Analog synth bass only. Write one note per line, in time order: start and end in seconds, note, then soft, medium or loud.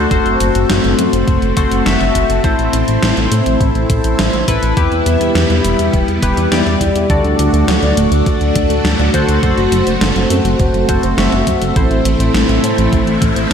0.11 0.21 F#1 loud
0.26 0.36 F#1 medium
0.40 0.51 F#1 medium
0.55 0.65 F#1 medium
0.70 0.80 F#1 medium
0.84 0.94 F#1 medium
0.99 1.09 F#2 medium
1.13 1.23 F#1 medium
1.28 1.38 F#1 medium
1.42 1.53 F#1 medium
1.57 1.67 F#1 medium
1.71 1.82 F#1 medium
1.86 1.96 F#1 loud
2.01 2.11 F#1 medium
2.15 2.25 F#1 medium
2.30 2.40 F#1 medium
2.44 2.54 A1 loud
2.59 2.69 A1 medium
2.73 2.84 A1 medium
2.88 2.98 A1 medium
3.03 3.13 A1 loud
3.17 3.27 A1 medium
3.32 3.42 A2 medium
3.46 3.57 A1 medium
3.60 3.71 A1 loud
3.75 3.86 A1 medium
3.90 4.00 A1 medium
4.05 4.15 A1 medium
4.19 4.29 A1 loud
4.34 4.44 A1 medium
4.48 4.58 A1 medium
4.63 4.73 A1 medium
4.77 4.87 E2 loud
4.92 5.02 E2 medium
5.06 5.16 E2 medium
5.21 5.31 E2 medium
5.35 5.46 E2 loud
5.50 5.60 E2 medium
5.64 5.75 E1 medium
5.79 5.89 E2 medium
5.93 6.04 E1 medium
6.08 6.19 E2 medium
6.22 6.33 E1 medium
6.37 6.47 E2 medium
6.51 6.62 E2 loud
6.66 6.77 E2 medium
6.81 6.91 E2 medium
6.95 7.06 E2 medium
7.10 7.20 D2 loud
7.24 7.35 D2 medium
7.39 7.49 D2 loud
7.53 7.64 D2 medium
7.68 7.78 D2 loud
7.82 7.93 D2 medium
7.97 8.08 D1 medium
8.12 8.22 D2 medium
8.26 8.37 D2 medium
8.41 8.51 D2 medium
8.56 8.66 D2 medium
8.70 8.80 D2 medium
8.84 8.95 D2 loud
8.99 9.10 D2 medium
9.14 9.24 D2 medium
9.28 9.39 D2 medium
9.43 9.53 F#1 medium
9.58 9.68 F#1 medium
9.72 9.82 F#1 loud
9.86 9.97 F#1 medium
10.01 10.12 F#1 loud
10.16 10.26 F#1 medium
10.30 10.41 F#2 medium
10.45 10.55 F#1 medium
10.60 10.70 F#1 loud
10.74 10.84 F#1 medium
10.89 10.99 F#1 medium
11.03 11.14 F#1 medium
11.18 11.28 F#1 loud
11.32 11.43 F#1 medium
11.47 11.57 F#1 medium
11.61 11.72 F#1 medium
11.76 11.87 A1 loud
11.90 12.01 A1 medium
12.05 12.15 A1 medium
12.20 12.30 A1 medium
12.34 12.45 A1 loud
12.49 12.59 A1 medium
12.63 12.74 A2 medium
12.78 12.88 A1 medium
12.93 13.03 A1 loud
13.07 13.17 A1 medium
13.22 13.32 A1 medium
13.36 13.47 A1 medium